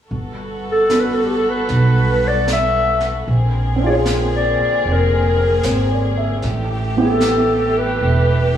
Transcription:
0.11 upright bass G1, string section G3 B3 F#4 A4, brush sweep
0.72 clarinet A4
0.89 grand piano B3 D4 F#4 A4, snare, hi-hat pedal
1.00 clarinet B4
1.14 clarinet A4
1.25 clarinet G4
1.37 clarinet A4
1.49 clarinet B4
1.69 upright bass B1, brush sweep, snare
2.28 clarinet D5
2.48 snare, hi-hat pedal
2.53 clarinet E5
3.00 snare
3.26 upright bass A#1, string section D3 A#3 C4 G#4, brush sweep
3.76 grand piano C4
3.80 grand piano D4 F4
3.86 grand piano G#4, clarinet D5
3.90 clarinet C#5
4.06 snare, hi-hat pedal
4.36 clarinet D5
4.61 muted upright bass stroke
4.84 upright bass F1, brush sweep
4.92 clarinet A#4
5.38 grand piano A#4
5.63 upright bass G#1, grand piano C5, snare, hi-hat pedal
5.91 grand piano D5
6.18 grand piano E5
6.42 upright bass A1, string section E3 A3 G4, brush sweep, snare
6.97 grand piano B3 C4 E4 G4, clarinet A4
7.20 snare, hi-hat pedal
7.78 clarinet B4
7.99 upright bass E1, brush sweep

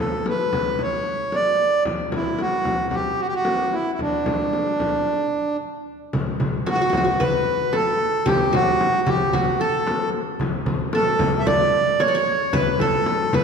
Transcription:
0.00 accordion A4
0.26 accordion B4, frame drum
0.53 frame drum
0.79 accordion C#5, frame drum
1.32 accordion D5, frame drum
1.85 frame drum
2.12 accordion E4, frame drum
2.39 accordion F#4, frame drum
2.65 frame drum
2.91 accordion G4, frame drum
3.20 accordion F#4
3.28 accordion G4
3.35 accordion F#4
3.45 frame drum
3.73 accordion E4
3.94 accordion E4
3.99 accordion D4, frame drum
4.26 frame drum
4.53 frame drum
4.80 frame drum
6.13 frame drum, darbuka dum
6.28 darbuka ka
6.40 frame drum, darbuka dum
6.66 qanun F#4, accordion F#4, darbuka tek, frame drum
6.76 qanun F#4
6.80 qanun F#4, darbuka ka
6.90 qanun F#4, frame drum
6.94 qanun F#4, darbuka dum
7.04 qanun F#4, darbuka ka
7.20 qanun B4, accordion B4, frame drum, darbuka dum
7.47 darbuka ka
7.60 darbuka ka
7.73 qanun A4, accordion A4, darbuka tek, frame drum
7.87 darbuka ka
8.00 darbuka ka
8.26 qanun G4, accordion G4, darbuka dum, frame drum
8.40 darbuka ka
8.53 qanun F#4, accordion F#4, darbuka dum, frame drum
8.81 darbuka tek, frame drum
8.94 darbuka ka
9.06 qanun G4, accordion G4, darbuka dum, frame drum
9.20 darbuka ka
9.33 qanun F#4, accordion F#4, darbuka dum, frame drum
9.60 accordion A4, qanun A4, darbuka ka
9.73 darbuka ka
9.87 darbuka tek, frame drum
10.13 darbuka ka
10.40 darbuka dum, frame drum
10.53 darbuka ka
10.66 darbuka dum, frame drum
10.93 qanun A4, accordion A4, darbuka tek, frame drum
11.07 darbuka ka
11.19 frame drum, darbuka dum
11.34 darbuka ka
11.39 accordion E5
11.46 qanun D5, accordion D5, darbuka dum, frame drum
11.73 darbuka ka
11.87 darbuka ka
12.00 qanun C#5, accordion C#5, darbuka tek, frame drum
12.08 qanun D5
12.14 qanun C#5, darbuka ka
12.27 darbuka ka
12.53 qanun B4, accordion B4, frame drum, darbuka dum
12.67 darbuka ka
12.79 accordion A4, qanun A4, darbuka dum, frame drum
13.06 darbuka tek, frame drum
13.33 qanun B4, accordion B4, darbuka dum, frame drum

